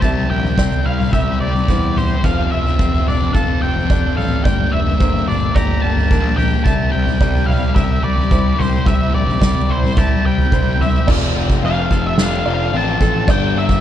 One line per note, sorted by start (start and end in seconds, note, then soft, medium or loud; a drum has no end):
0.00 0.24 C2 medium
0.00 0.10 C3 medium
0.00 1.41 C3 medium
0.00 0.09 G3 medium
0.00 0.59 C4 medium
0.00 0.85 E4 medium
0.00 1.12 G4 medium
0.00 0.58 E5 medium
0.00 0.30 A5 medium
0.00 kick loud
0.00 floor tom medium
0.10 0.17 C3 soft
0.10 0.17 G3 soft
0.18 0.24 C3 medium
0.18 0.25 G3 medium
0.24 0.32 C3 medium
0.24 0.33 G3 medium
0.30 0.52 A#1 medium
0.30 0.39 C3 medium
0.30 0.40 G3 medium
0.30 0.87 G5 medium
0.40 0.47 C3 medium
0.40 0.48 G3 medium
0.44 0.55 C3 medium
0.44 0.56 G3 medium
0.44 floor tom medium
0.56 0.79 C2 medium
0.56 0.62 C3 medium
0.56 0.64 G3 medium
0.56 1.41 C4 medium
0.56 1.13 D5 medium
0.56 kick loud
0.56 snare medium
0.63 0.70 C3 medium
0.63 0.71 G3 medium
0.70 0.78 C3 medium
0.70 0.79 G3 medium
0.70 floor tom medium
0.79 0.86 C3 medium
0.79 0.87 G3 medium
0.85 1.07 C2 medium
0.85 0.93 C3 medium
0.85 0.93 G3 medium
0.85 1.68 E4 medium
0.85 1.13 F5 medium
0.94 1.01 C3 medium
0.94 1.01 G3 medium
0.99 1.09 C3 medium
0.99 1.09 G3 medium
0.99 mid tom medium
1.09 1.35 C2 medium
1.09 1.17 C3 medium
1.09 1.17 G3 medium
1.09 1.96 G4 medium
1.09 1.40 E5 medium
1.09 kick loud
1.09 floor tom medium
1.14 1.25 C3 medium
1.14 1.24 G3 medium
1.14 1.69 E5 medium
1.24 1.30 C3 medium
1.24 1.32 G3 medium
1.30 1.38 C3 medium
1.30 1.39 G3 medium
1.39 1.63 C2 medium
1.39 1.46 C3 medium
1.39 1.47 G3 medium
1.39 2.24 C4 medium
1.39 1.97 D5 medium
1.47 1.54 C3 medium
1.47 1.54 G3 medium
1.54 1.62 C3 medium
1.54 1.62 G3 medium
1.54 floor tom medium
1.62 1.69 C3 medium
1.62 1.71 G3 medium
1.68 2.12 E2 medium
1.68 1.77 C3 medium
1.68 1.78 G3 medium
1.68 2.24 E4 medium
1.68 2.24 C5 medium
1.68 kick loud
1.68 mid tom medium
1.77 1.85 C3 medium
1.77 1.85 G3 medium
1.86 1.93 C3 medium
1.86 1.93 G3 medium
1.93 2.01 C3 medium
1.93 2.00 G3 medium
1.93 2.24 G4 medium
1.93 floor tom medium
1.93 mid tom medium
1.97 2.08 C3 medium
1.97 2.08 G3 medium
1.97 2.25 C5 medium
2.08 2.14 C3 soft
2.08 2.16 G3 medium
2.15 2.22 C3 medium
2.15 2.23 G3 medium
2.24 2.46 F1 medium
2.24 2.30 F3 medium
2.24 3.62 F3 medium
2.24 2.32 C4 medium
2.24 2.79 F5 medium
2.24 2.51 F5 medium
2.24 kick loud
2.24 floor tom medium
2.24 crash medium
2.31 2.38 F3 soft
2.31 2.40 C4 medium
2.39 2.45 F3 medium
2.39 2.47 C4 medium
2.46 2.53 F3 soft
2.46 2.55 C4 soft
2.52 2.74 F1 medium
2.52 2.61 F3 medium
2.52 2.62 C4 medium
2.52 3.08 E5 medium
2.62 2.68 F3 soft
2.62 2.70 C4 medium
2.62 floor tom medium
2.69 2.76 F3 medium
2.69 2.78 C4 medium
2.77 3.01 F1 medium
2.77 2.85 F3 soft
2.77 2.85 C4 medium
2.77 3.62 C4 medium
2.77 3.34 E5 medium
2.77 kick loud
2.85 2.91 F3 medium
2.85 2.93 C4 medium
2.92 2.99 F3 medium
2.92 3.00 C4 medium
2.92 floor tom medium
2.99 3.07 F3 medium
2.99 3.07 C4 medium
3.07 3.29 F1 medium
3.07 3.14 F3 soft
3.07 3.15 C4 medium
3.07 3.90 D4 medium
3.07 3.33 D5 medium
3.07 mid tom medium
3.15 3.22 F3 medium
3.15 3.22 C4 medium
3.22 3.30 F3 medium
3.22 3.30 C4 medium
3.31 3.56 F1 medium
3.31 3.38 F3 medium
3.31 3.38 C4 medium
3.31 3.62 A5 medium
3.31 kick loud
3.31 floor tom medium
3.35 3.44 F3 medium
3.35 3.46 C4 medium
3.35 4.16 A4 medium
3.35 3.90 F5 medium
3.44 3.52 F3 medium
3.44 3.53 C4 medium
3.53 3.60 F3 soft
3.53 3.60 C4 medium
3.61 3.84 F1 medium
3.61 3.68 F3 medium
3.61 3.68 C4 medium
3.61 4.45 C4 medium
3.61 4.17 G5 medium
3.69 3.75 F3 medium
3.69 3.76 C4 medium
3.76 3.83 F3 medium
3.76 3.84 C4 medium
3.76 floor tom medium
3.84 3.91 F3 soft
3.84 3.92 C4 medium
3.90 4.12 F1 medium
3.90 3.98 F3 medium
3.90 3.99 C4 medium
3.90 4.46 D4 medium
3.90 4.44 D5 medium
3.90 kick loud
3.98 4.06 F3 soft
3.98 4.07 C4 medium
4.07 4.13 F3 medium
4.07 4.15 C4 medium
4.14 4.21 F3 soft
4.14 4.22 C4 medium
4.14 4.45 A4 medium
4.14 4.44 F5 medium
4.18 4.39 A1 medium
4.18 4.29 F3 medium
4.18 floor tom medium
4.18 mid tom medium
4.23 4.30 C4 medium
4.30 4.37 F3 soft
4.30 4.38 C4 medium
4.37 4.44 F3 medium
4.37 4.45 C4 medium
4.44 4.67 G1 medium
4.44 5.84 G2 medium
4.44 4.52 G3 medium
4.44 4.53 A#3 medium
4.44 5.00 D5 medium
4.44 4.73 G5 medium
4.44 kick loud
4.44 floor tom medium
4.53 4.60 G3 soft
4.53 4.61 A#3 medium
4.61 4.67 G3 medium
4.61 4.68 A#3 medium
4.68 4.74 G3 soft
4.68 4.74 A#3 medium
4.72 4.94 F1 medium
4.72 4.82 G3 medium
4.72 4.82 A#3 medium
4.72 5.27 E5 medium
4.82 4.90 G3 soft
4.82 4.90 A#3 medium
4.87 4.98 G3 medium
4.87 4.97 A#3 medium
4.87 floor tom medium
4.97 5.22 G1 medium
4.97 5.05 G3 medium
4.97 5.05 A#3 medium
4.97 5.83 A#3 medium
4.97 5.55 C5 medium
4.97 kick loud
5.06 5.12 G3 medium
5.06 5.14 A#3 medium
5.12 5.20 G3 medium
5.12 5.21 A#3 medium
5.12 floor tom medium
5.21 5.29 G3 medium
5.21 5.29 A#3 medium
5.28 5.50 G1 medium
5.28 5.36 G3 medium
5.28 5.36 A#3 medium
5.28 6.10 D4 medium
5.28 5.56 D5 medium
5.28 mid tom medium
5.36 5.43 G3 medium
5.36 5.44 A#3 medium
5.44 5.51 G3 medium
5.44 5.51 A#3 medium
5.51 5.77 G1 medium
5.51 5.59 G3 medium
5.51 5.59 A#3 medium
5.51 5.84 A#5 loud
5.55 5.65 G3 medium
5.55 6.38 G4 medium
5.55 6.11 D5 medium
5.55 kick loud
5.55 floor tom medium
5.60 5.67 A#3 medium
5.66 5.73 G3 medium
5.66 5.76 A#3 medium
5.74 5.82 G3 medium
5.74 5.82 A#3 medium
5.81 6.05 G1 medium
5.81 5.89 G3 medium
5.81 5.90 A#3 medium
5.81 6.66 A#3 medium
5.81 6.37 A5 medium
5.90 5.97 G3 medium
5.90 5.97 A#3 medium
5.97 6.04 G3 medium
5.97 6.05 A#3 medium
5.97 floor tom medium
6.05 6.12 G3 medium
6.05 6.13 A#3 medium
6.10 6.54 A#1 medium
6.10 6.20 G3 medium
6.10 6.20 A#3 medium
6.10 6.66 D4 medium
6.10 6.66 A#4 medium
6.10 kick loud
6.20 6.27 G3 soft
6.20 6.28 A#3 medium
6.27 6.35 G3 medium
6.27 6.35 A#3 medium
6.35 6.42 G3 soft
6.35 6.42 A#3 medium
6.35 7.76 G4 medium
6.35 6.64 G5 medium
6.35 floor tom medium
6.35 mid tom medium
6.42 6.50 G3 medium
6.42 6.50 A#3 medium
6.51 6.58 G3 soft
6.51 6.58 A#3 medium
6.58 6.66 G3 medium
6.58 6.66 A#3 medium
6.64 6.87 C2 medium
6.64 6.74 C3 medium
6.64 8.04 C3 medium
6.64 6.74 G3 medium
6.64 7.21 E5 medium
6.64 6.92 A5 loud
6.64 kick loud
6.64 floor tom medium
6.74 6.81 C3 medium
6.74 6.82 G3 medium
6.81 6.89 C3 medium
6.81 6.90 G3 medium
6.90 6.96 C3 medium
6.90 6.97 G3 medium
6.90 7.50 G5 loud
6.94 7.15 C2 medium
6.94 7.04 C3 medium
6.94 7.05 G3 medium
7.06 7.13 C3 medium
7.06 7.13 G3 medium
7.06 floor tom medium
7.13 7.20 C3 medium
7.13 7.21 G3 medium
7.20 7.43 C2 medium
7.20 7.29 C3 medium
7.20 8.03 G3 medium
7.20 7.29 G3 medium
7.20 7.76 D5 medium
7.20 kick loud
7.29 7.36 C3 medium
7.29 7.37 G3 medium
7.35 7.44 C3 medium
7.35 7.44 G3 medium
7.35 floor tom medium
7.44 7.52 C3 medium
7.44 7.53 G3 medium
7.44 7.73 F5 medium
7.48 7.70 C2 medium
7.48 8.30 E4 medium
7.48 mid tom medium
7.53 7.59 C3 medium
7.53 7.61 G3 medium
7.59 7.66 C3 medium
7.59 7.69 G3 medium
7.67 7.75 C3 medium
7.67 7.77 G3 medium
7.75 7.98 C2 loud
7.75 7.83 C3 medium
7.75 7.84 G3 medium
7.75 8.57 G4 medium
7.75 8.31 E5 medium
7.75 8.01 E5 medium
7.75 kick loud
7.75 floor tom medium
7.84 7.90 C3 medium
7.84 7.92 G3 medium
7.90 7.98 C3 medium
7.90 8.00 G3 medium
7.99 8.06 C3 medium
7.99 8.07 G3 medium
8.03 8.25 C2 medium
8.03 8.14 C3 medium
8.03 9.41 G3 medium
8.03 8.61 D5 loud
8.07 8.15 G3 medium
8.15 8.22 C3 medium
8.15 8.23 G3 medium
8.15 floor tom medium
8.22 8.30 C3 medium
8.22 8.31 G3 medium
8.31 8.53 C2 loud
8.31 8.38 C3 medium
8.31 8.39 G3 medium
8.31 9.69 E4 medium
8.31 8.86 C5 medium
8.31 kick loud
8.39 8.46 C3 medium
8.39 8.46 G3 medium
8.46 8.53 C3 medium
8.46 8.54 G3 medium
8.54 8.61 C3 medium
8.54 8.62 G3 medium
8.58 8.81 C2 loud
8.58 8.69 C3 medium
8.58 8.70 G3 medium
8.58 9.97 G4 medium
8.58 8.87 C5 medium
8.58 floor tom medium
8.58 mid tom medium
8.70 8.76 C3 medium
8.70 8.78 G3 medium
8.77 8.84 C3 medium
8.77 8.86 G3 medium
8.85 9.09 C2 loud
8.85 8.94 C3 medium
8.85 10.25 C3 medium
8.85 8.94 G3 medium
8.85 9.41 E5 medium
8.85 9.14 E5 loud
8.85 kick loud
8.85 floor tom medium
8.94 9.01 C3 medium
8.94 9.02 G3 medium
9.01 9.09 C3 medium
9.01 9.10 G3 medium
9.10 9.16 C3 medium
9.10 9.18 G3 medium
9.14 9.36 A#1 medium
9.14 9.23 C3 medium
9.14 9.71 D5 loud
9.18 9.25 G3 medium
9.24 9.31 C3 medium
9.24 9.33 G3 medium
9.28 9.40 C3 medium
9.28 floor tom medium
9.34 9.40 G3 medium
9.40 9.63 C2 loud
9.40 9.47 C3 medium
9.40 9.47 G3 medium
9.40 10.26 G3 medium
9.40 9.97 D5 medium
9.40 kick loud
9.40 snare medium
9.48 9.54 C3 medium
9.48 9.55 G3 medium
9.54 9.62 C3 medium
9.54 9.62 G3 medium
9.54 floor tom medium
9.62 9.69 C3 medium
9.62 9.70 G3 medium
9.69 9.91 C2 medium
9.69 9.76 C3 medium
9.69 9.78 G3 medium
9.69 10.52 E4 medium
9.69 9.98 C5 medium
9.77 9.84 C3 medium
9.77 9.86 G3 medium
9.84 9.92 C3 medium
9.84 9.93 G3 medium
9.84 mid tom medium
9.93 10.00 C3 medium
9.93 10.00 G3 medium
9.97 10.19 C2 loud
9.97 10.08 C3 medium
9.97 10.08 G3 medium
9.97 10.80 G4 medium
9.97 10.52 E5 medium
9.97 10.26 A5 loud
9.97 kick loud
9.97 floor tom medium
10.08 10.15 C3 medium
10.08 10.15 G3 medium
10.16 10.22 C3 medium
10.16 10.23 G3 medium
10.23 10.47 C2 medium
10.23 10.30 C3 medium
10.23 10.31 G3 medium
10.23 10.82 G5 loud
10.27 10.37 C3 medium
10.27 11.09 G3 medium
10.32 10.39 G3 medium
10.37 10.45 C3 medium
10.37 10.47 G3 medium
10.37 floor tom medium
10.46 10.53 C3 medium
10.46 10.55 G3 medium
10.52 10.96 C2 loud
10.52 10.61 C3 medium
10.52 10.62 G3 medium
10.52 11.08 E4 medium
10.52 11.08 C5 medium
10.52 kick loud
10.52 mid tom medium
10.61 10.68 C3 medium
10.61 10.70 G3 medium
10.68 10.75 C3 medium
10.68 10.78 G3 medium
10.76 10.83 C3 medium
10.76 10.86 G3 medium
10.80 11.08 G4 medium
10.80 11.07 E5 medium
10.80 floor tom medium
10.80 mid tom medium
10.85 10.92 C3 medium
10.85 10.92 G3 medium
10.92 11.00 C3 medium
10.92 11.00 G3 medium
11.00 11.07 C3 medium
11.00 11.08 G3 medium
11.07 11.31 F1 loud
11.07 11.61 F2 medium
11.07 11.62 C3 loud
11.07 12.46 F3 medium
11.07 11.62 F3 loud
11.07 11.63 D5 loud
11.07 kick loud
11.07 crash loud
11.07 crash medium
11.35 11.58 F1 medium
11.35 12.73 C4 medium
11.35 crash medium
11.50 kick medium
11.62 11.86 F1 loud
11.62 11.89 F2 medium
11.62 11.90 C3 medium
11.62 11.91 F3 medium
11.62 12.19 D4 medium
11.62 12.18 F5 medium
11.62 12.03 F5 medium
11.62 crash medium
11.91 12.14 F1 medium
11.91 12.17 F2 medium
11.91 12.17 C3 medium
11.91 12.18 F3 medium
11.91 13.01 A4 medium
11.91 kick medium
11.91 crash medium
12.07 12.22 E5 medium
12.18 12.41 F1 medium
12.18 12.72 F2 medium
12.18 12.72 C3 loud
12.18 12.73 F3 loud
12.18 13.29 D4 medium
12.18 snare loud
12.18 crash medium
12.22 12.77 F5 medium
12.46 12.69 F1 medium
12.46 13.29 F3 medium
12.46 13.01 D5 medium
12.46 crash medium
12.72 12.96 A1 medium
12.72 12.99 F2 medium
12.72 12.99 C3 medium
12.72 13.00 F3 medium
12.72 13.29 C4 medium
12.72 crash medium
12.77 13.26 A5 loud
13.00 13.24 A1 medium
13.00 13.26 F2 medium
13.00 13.26 C3 medium
13.00 13.27 F3 medium
13.00 13.28 A4 medium
13.00 13.29 A4 medium
13.00 kick medium
13.00 crash medium
13.27 13.52 G1 loud
13.27 13.80 G2 loud
13.27 13.80 G2 medium
13.27 13.80 D3 loud
13.27 13.80 G3 loud
13.27 13.80 D5 medium
13.27 13.55 G5 loud
13.27 kick loud
13.27 crash loud
13.54 13.78 G1 medium
13.54 13.80 A#3 medium
13.54 crash medium
13.58 13.80 E5 medium
13.69 kick loud